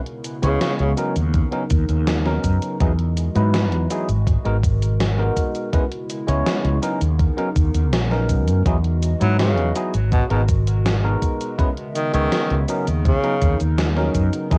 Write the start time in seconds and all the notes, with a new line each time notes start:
Already playing: C#3 G#3 B3 E4
0.06 closed hi-hat
0.24 closed hi-hat, cabasa
0.42 C#2 C#3 G#3 B3 C#4 E4 C#5, closed hi-hat, cabasa
0.61 C#3, snare, closed hi-hat, cabasa
0.79 C#2 C#3, closed hi-hat
0.97 F#3 B3 C#4 D#4 A#4, closed hi-hat, cabasa
1.16 D#2, closed hi-hat, cabasa
1.34 kick, closed hi-hat, cabasa
1.52 F#3 B3 C#4 D#4 A#4, closed hi-hat
1.70 D#2, kick, closed hi-hat, cabasa
1.89 D#2, closed hi-hat, cabasa
2.07 snare, closed hi-hat, cabasa
2.25 F#3 B3 C#4 D#4 A#4, snare
2.44 F#2, kick, closed hi-hat, cabasa
2.62 closed hi-hat, cabasa
2.80 E2 E3 F#3 G#3 B3 D#4 E4 F#4 G#4 D#5, kick, closed hi-hat, cabasa
2.99 closed hi-hat
3.17 closed hi-hat, cabasa
3.35 G#2 F#3 B3 D#4 E4 B4, closed hi-hat, cabasa
3.54 snare, closed hi-hat, cabasa
3.72 E2, closed hi-hat
3.90 F#3 B3 D#4 E4 G#4, closed hi-hat, cabasa
4.09 G#1, closed hi-hat, cabasa
4.27 B2 A#4, kick, closed hi-hat, cabasa
4.45 G#1 G#3 B3 D#4 F#4 A#4, closed hi-hat
4.63 kick, closed hi-hat, cabasa
4.82 closed hi-hat, cabasa
5.00 snare, closed hi-hat, cabasa
5.18 G#3 B3 D#4 F#4 A#4
5.37 kick, closed hi-hat, cabasa
5.55 closed hi-hat, cabasa
5.73 C#3 G#3 B3 C#4 E4 B4, kick, closed hi-hat, cabasa
5.92 closed hi-hat
6.10 closed hi-hat, cabasa
6.27 C#2 G#3 B3 C#4 E4 C#5, closed hi-hat, cabasa
6.47 snare, closed hi-hat, cabasa
6.65 C#2, closed hi-hat
6.82 F#3 B3 C#4 D#4 A#4, closed hi-hat, cabasa
7.01 D#2, closed hi-hat, cabasa
7.20 kick, closed hi-hat, cabasa
7.37 F#3 B3 C#4 D#4 A#4, closed hi-hat
7.56 D#2, kick, closed hi-hat, cabasa
7.74 D#2, closed hi-hat, cabasa
7.93 A#1, snare, closed hi-hat, cabasa
8.10 F#3 B3 C#4 D#4 A#4, snare
8.29 kick, closed hi-hat, cabasa
8.48 F#2, closed hi-hat, cabasa
8.65 E2 E3 F#3 G#3 B3 D#4 E4 F#4 G#4 D#5, kick, closed hi-hat, cabasa
8.84 closed hi-hat
9.03 closed hi-hat, cabasa
9.20 G#2 F#3 B3 D#4 E4 B4, closed hi-hat, cabasa
9.39 C#3, snare, closed hi-hat, cabasa
9.58 E2, closed hi-hat
9.75 F#3 B3 D#4 E4 G#4, closed hi-hat, cabasa
9.94 G#1, closed hi-hat, cabasa
10.12 B2 A#4, kick, closed hi-hat, cabasa
10.30 G#1 B2 G#3 B3 D#4 F#4 A#4, closed hi-hat
10.49 kick, closed hi-hat, cabasa
10.67 closed hi-hat, cabasa
10.86 snare, closed hi-hat, cabasa
11.03 G#3 B3 D#4 F#4 A#4
11.22 kick, closed hi-hat, cabasa
11.41 closed hi-hat, cabasa
11.58 C#3 G#3 B3 C#4 E4 B4 E5, kick, closed hi-hat, cabasa
11.77 closed hi-hat
11.95 D#3, closed hi-hat, cabasa
12.13 C#2 D#3 G#3 B3 C#4 C#5 E5, closed hi-hat, cabasa
12.32 snare, closed hi-hat, cabasa
12.50 C#2, closed hi-hat
12.68 F#3 B3 C#4 D#4 A#4, closed hi-hat, cabasa
12.87 D#2, closed hi-hat, cabasa
13.05 C#3, kick, closed hi-hat, cabasa
13.23 F#3 B3 C#4 D#4 A#4, closed hi-hat
13.41 D#2, kick, closed hi-hat, cabasa
13.60 D#2, closed hi-hat, cabasa
13.78 snare, closed hi-hat, cabasa
13.96 F#3 B3 C#4 D#4 A#4, snare
14.15 F#2, kick, closed hi-hat, cabasa
14.33 closed hi-hat, cabasa
14.51 E2 E3 F#3 G#3 B3 D#4 E4 F#4 G#4 D#5, kick, closed hi-hat, cabasa